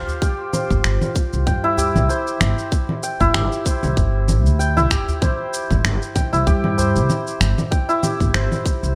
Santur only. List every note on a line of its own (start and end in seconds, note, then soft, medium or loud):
0.00 1.70 F4 loud
0.00 0.21 G4 medium
0.00 0.53 C5 medium
0.00 1.35 G5 medium
0.22 1.77 G4 medium
0.53 2.09 C5 medium
1.47 3.03 G5 medium
1.64 3.20 E4 loud
1.78 3.34 G4 medium
2.09 3.65 C5 medium
3.03 4.59 G5 medium
3.20 4.76 E4 loud
3.34 4.90 G4 medium
3.66 5.21 C5 medium
4.59 6.15 G5 medium
4.77 6.32 E4 loud
4.91 6.46 G4 medium
5.22 6.77 C5 medium
6.15 7.71 G5 medium
6.33 7.88 E4 loud
6.47 8.02 G4 medium
6.78 8.34 C5 medium
7.71 8.95 G5 medium
7.89 8.95 E4 loud
8.03 8.95 G4 medium
8.34 8.95 C5 medium